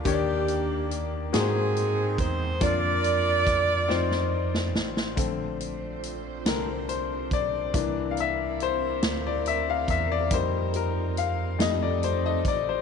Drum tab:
HH |x-x-x-x-x-x-|x-x-x-------|x-x-x-x-x-x-|x-x-x-x-x-x-|
SD |------o-----|----o-oo-ooo|------o-----|------o-----|
BD |o---------o-|o---o-------|o---------o-|o---------o-|

HH |x-x-x-x-x-x-|
SD |------o-----|
BD |o---------o-|